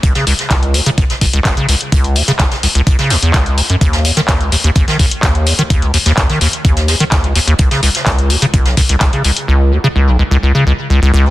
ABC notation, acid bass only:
X:1
M:4/4
L:1/16
Q:1/4=127
K:Dbdor
V:1 name="Acid bass" clef=bass
D,, D, D,, z D,,2 E,, D, D,, z D,, D,, D,, D, D,, z | D,,2 E,, D, D,, z D,, D,, D,, D, D,, F,, z2 E,, G,, | E,,2 F,, E, E,, D,, E,, E,, E,, E, E,, z E,,2 F,, E, | E,, D,, E,, E,, E,, E, E,, z E,,2 F,, E, E,, D,, E,, E,, |
^C,, ^C, C,, z C,,2 ^D,, C, C,, =B,,, C,, C,, C,, C, C,, z | ^C,,2 ^D,, ^C, C,, =B,,, C,, C,, C,, C, C,, z C,, C,, C,, D,, |]